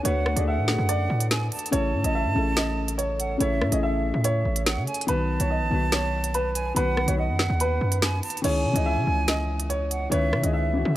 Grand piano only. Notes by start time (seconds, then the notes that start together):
0.05 C#5
0.36 D5
0.48 E5
0.89 D5
1.72 C#5
2.04 D#5
2.15 E5
2.56 D#5
2.98 C#5
3.41 C#5
3.72 D#5
3.83 E5
4.25 C#5
5.09 B4
5.41 C#5
5.50 D#5
5.93 C#5
6.35 B4
6.77 B4
7.08 C#5
7.18 D#5
7.61 B4
8.45 C#5
8.76 D#5
8.86 E5
9.28 D#5
9.70 C#5
10.12 C#5
10.44 D#5
10.53 E5